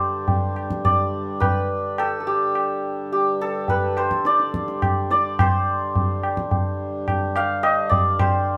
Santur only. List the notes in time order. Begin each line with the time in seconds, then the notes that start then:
Already playing: G4 A4 C5 D5
0.85 D5
1.40 B4
1.99 A4
2.20 A4
2.27 G4
3.13 G4
3.41 A4
3.70 B4
3.97 C5
4.26 D5
5.11 D5
5.40 C5
7.36 F5
7.63 D#5
7.89 D5
8.19 C5